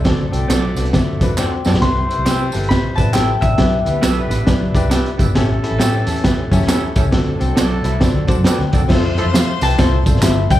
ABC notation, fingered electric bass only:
X:1
M:4/4
L:1/16
Q:"Swing" 1/4=136
K:Dmix
V:1 name="Fingered electric bass" clef=bass
D,,2 C,,2 B,,,2 C,,2 D,,2 E,,3 z F,, B,,, | C,,2 z C,, C,2 G,,,2 z2 A,,,4 A,,,2 | B,,,2 D,,2 B,,,2 A,,,2 B,,,2 C,,3 z D,, G,,, | A,,,2 z A,,, A,,2 E,,3 z F,, E,,3 ^C,,2 |
D,,2 C,,2 B,,,2 C,,2 z D,, E,, F,, z D,, C,, D,, | =F,,3 F,, =F,2 C,,2 C,,3 A,,, G,,,2 =F,,,2 |]